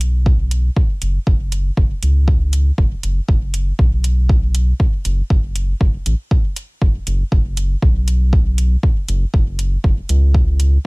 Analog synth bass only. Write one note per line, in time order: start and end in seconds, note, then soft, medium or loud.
0.00 0.69 B1 medium
1.02 1.18 F#1 loud
1.27 1.70 F#1 medium
1.77 1.94 F#1 medium
2.02 2.71 C#2 medium
2.78 2.95 F#1 medium
3.03 3.20 F#1 medium
3.28 3.72 F#1 medium
3.79 4.73 B1 medium
5.05 5.21 F#1 medium
5.30 5.74 F#1 medium
5.81 5.97 F#1 medium
6.06 6.14 A1 medium
6.82 6.98 F#1 medium
7.07 7.23 F#1 loud
7.32 7.75 F#1 medium
7.82 8.76 B1 medium
9.08 9.25 F#1 loud
9.34 9.77 F#1 medium
9.84 10.01 F#1 medium
10.09 10.78 C#2 medium